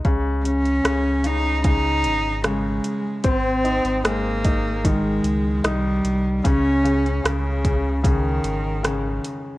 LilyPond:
<<
  \new Staff \with { instrumentName = "Cello" } { \time 4/4 \key des \lydian \tempo 4 = 75 r8 des'4 ees'8 ees'4 aes4 | c'4 bes4 aes4 g4 | des'4 des4 ees4. r8 | }
  \new Staff \with { instrumentName = "Grand piano" } { \clef bass \time 4/4 \key des \lydian des8 des8 des8 des8 des4 des4 | c'8 ees'8 aes8 ees'8 ees4 ees'4 | des8 des8 des8 des8 des4 des4 | }
  \new Staff \with { instrumentName = "Sub bass" } { \clef bass \time 4/4 \key des \lydian des,4 des,4. aes,,4 r8 | aes,,8. aes,,16 aes,,4. des,8 c,8 c,8 | des,4 des,4. aes,,4 r8 | }
  \new DrumStaff \with { instrumentName = "Drums" } \drummode { \time 4/4 <hh bd>8 hh16 hh16 <hh ss>8 hh8 <hh bd>8 hh8 <hh ss>8 hh8 | <hh bd>8 hh16 hh16 <hh ss>8 <hh bd>8 <hh bd>8 hh8 <hh ss>8 hh8 | <hh bd>8 hh16 hh16 <hh ss>8 <hh bd>8 <hh bd>8 hh8 <hh ss>8 hh8 | }
>>